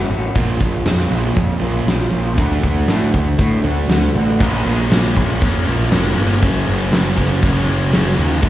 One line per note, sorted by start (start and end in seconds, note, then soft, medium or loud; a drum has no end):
0.00 0.11 F#3 medium
0.00 0.10 A#3 medium
0.09 0.29 A1 medium
0.09 0.35 F#3 medium
0.09 0.35 A#3 medium
0.09 0.34 C#4 medium
0.09 0.34 F#4 medium
0.09 open hi-hat medium
0.35 0.54 A#1 medium
0.35 0.59 A#2 medium
0.35 0.85 A#2 medium
0.35 0.59 F3 medium
0.35 0.86 F3 loud
0.35 0.60 A#3 loud
0.35 0.61 A#3 medium
0.35 0.60 C#4 loud
0.35 0.59 F4 loud
0.35 kick loud
0.35 open hi-hat medium
0.60 0.79 A#1 medium
0.60 0.84 A#2 medium
0.60 0.84 F3 medium
0.60 0.86 A#3 medium
0.60 0.87 C#4 medium
0.60 0.87 F4 medium
0.60 kick medium
0.60 snare soft
0.60 open hi-hat medium
0.85 1.04 F2 medium
0.85 1.09 A#2 medium
0.85 1.88 A#2 medium
0.85 1.09 F3 medium
0.85 1.86 F3 medium
0.85 1.63 A#3 medium
0.85 1.62 C#4 medium
0.85 1.61 F4 medium
0.85 snare loud
0.85 open hi-hat medium
1.10 1.30 A#1 medium
1.10 1.33 A#2 loud
1.10 1.34 F3 loud
1.10 1.35 A#3 loud
1.10 open hi-hat medium
1.35 1.55 F2 medium
1.35 1.58 A#2 medium
1.35 1.59 F3 medium
1.35 kick loud
1.35 open hi-hat medium
1.59 1.80 A#1 medium
1.59 1.84 A#2 medium
1.59 1.85 F3 loud
1.59 1.85 A#3 loud
1.59 1.88 C#4 medium
1.59 1.88 F4 medium
1.59 open hi-hat medium
1.64 1.87 A#3 medium
1.85 2.05 A#1 medium
1.85 2.09 A#2 medium
1.85 2.09 F3 medium
1.85 2.37 F3 medium
1.85 2.13 A#3 medium
1.85 2.12 C#4 medium
1.85 snare loud
1.85 open hi-hat medium
1.90 2.11 F4 medium
2.10 2.38 A#1 medium
2.10 2.34 A#2 medium
2.10 2.34 F3 medium
2.10 2.37 C#4 medium
2.10 2.37 F4 medium
2.10 open hi-hat medium
2.14 2.37 A#3 medium
2.36 2.56 D2 medium
2.36 2.61 D3 medium
2.36 2.86 D3 medium
2.36 2.62 A3 loud
2.36 2.64 A3 loud
2.36 2.61 D4 loud
2.36 2.63 D4 loud
2.36 2.62 F#4 loud
2.36 kick loud
2.36 open hi-hat medium
2.51 snare soft
2.62 2.82 D2 medium
2.62 2.87 D3 medium
2.62 2.87 A3 medium
2.62 2.88 A3 medium
2.62 2.87 D4 medium
2.62 2.88 D4 medium
2.62 2.89 F#4 medium
2.62 kick medium
2.62 open hi-hat medium
2.87 3.07 A2 medium
2.87 3.88 D3 medium
2.87 3.12 D3 medium
2.87 3.66 A3 medium
2.87 3.12 A3 medium
2.87 3.64 D4 medium
2.87 3.64 F#4 medium
2.87 snare loud
2.87 open hi-hat medium
3.13 3.33 D2 medium
3.13 3.36 D3 medium
3.13 3.37 A3 medium
3.13 kick medium
3.13 open hi-hat medium
3.38 3.58 A2 medium
3.38 3.62 D3 medium
3.38 3.62 A3 medium
3.38 kick loud
3.38 open hi-hat medium
3.63 3.82 D2 medium
3.63 3.88 D3 medium
3.63 3.88 A3 loud
3.63 3.88 A3 medium
3.63 3.88 D4 loud
3.63 3.89 D4 medium
3.63 3.90 F#4 medium
3.63 open hi-hat medium
3.88 4.07 D2 medium
3.88 4.38 D3 medium
3.88 4.12 D3 medium
3.88 4.12 A3 medium
3.88 4.16 A3 medium
3.88 4.15 D4 medium
3.88 4.13 F#4 medium
3.88 snare loud
3.88 open hi-hat medium
4.14 4.40 A1 medium
4.14 4.38 D3 medium
4.14 4.38 A3 medium
4.14 4.40 A3 medium
4.14 4.40 D4 medium
4.14 4.39 F#4 medium
4.14 open hi-hat medium
4.40 4.63 A#1 medium
4.40 4.89 A#2 loud
4.40 4.90 F3 loud
4.40 4.91 A#3 loud
4.40 4.92 C#4 loud
4.40 kick loud
4.40 crash loud
4.40 crash medium
4.54 snare soft
4.65 4.88 A#1 medium
4.65 crash medium
4.90 5.14 A#1 medium
4.90 5.40 A#2 medium
4.90 5.40 F3 medium
4.90 5.41 A#3 medium
4.90 5.41 C#4 medium
4.90 snare loud
4.90 crash medium
5.17 5.39 A#1 medium
5.17 kick medium
5.17 crash medium
5.41 5.64 F2 medium
5.41 5.91 A#2 medium
5.41 5.67 F3 medium
5.41 5.66 A#3 loud
5.41 5.65 C#4 loud
5.41 kick loud
5.41 crash medium
5.66 5.90 A#1 medium
5.66 5.92 F3 medium
5.66 5.92 A#3 medium
5.66 5.93 C#4 medium
5.66 crash medium
5.81 snare soft
5.92 6.15 F1 medium
5.92 6.41 A#2 medium
5.92 6.18 F3 medium
5.92 6.18 A#3 medium
5.92 6.16 C#4 medium
5.92 snare loud
5.92 crash medium
6.17 6.43 G1 medium
6.17 6.42 F3 medium
6.17 6.42 A#3 medium
6.17 6.41 C#4 medium
6.17 crash medium
6.42 6.65 F#1 medium
6.42 7.18 F#2 loud
6.42 6.90 C#3 medium
6.42 6.92 F#3 loud
6.42 6.92 A#3 loud
6.42 6.92 C#4 loud
6.42 kick loud
6.42 crash medium
6.68 6.90 F#1 medium
6.68 crash medium
6.92 7.15 F#1 medium
6.92 7.41 C#3 medium
6.92 7.42 F#3 medium
6.92 7.41 A#3 medium
6.92 7.43 C#4 medium
6.92 snare loud
6.92 crash medium
7.17 7.40 F#1 medium
7.17 kick medium
7.17 crash medium
7.41 7.66 F#1 medium
7.41 7.92 F#2 medium
7.41 7.90 C#3 medium
7.41 7.68 F#3 medium
7.41 7.65 A#3 loud
7.41 7.64 C#4 loud
7.41 kick loud
7.41 crash medium
7.65 7.90 F#1 medium
7.65 7.92 F#3 medium
7.65 7.91 A#3 medium
7.65 7.92 C#4 medium
7.65 crash medium
7.91 8.16 F#1 medium
7.91 8.41 F#2 medium
7.91 8.40 C#3 medium
7.91 8.17 F#3 medium
7.91 8.15 A#3 medium
7.91 8.15 C#4 medium
7.91 snare loud
7.91 crash medium
8.16 8.41 D#2 medium
8.16 8.41 F#3 medium
8.16 8.41 A#3 medium
8.16 8.41 C#4 medium
8.16 crash medium
8.41 8.49 D2 loud
8.41 8.49 D3 medium
8.41 8.49 F#3 loud
8.41 8.49 A3 loud
8.41 8.49 D4 loud
8.41 kick loud
8.41 crash medium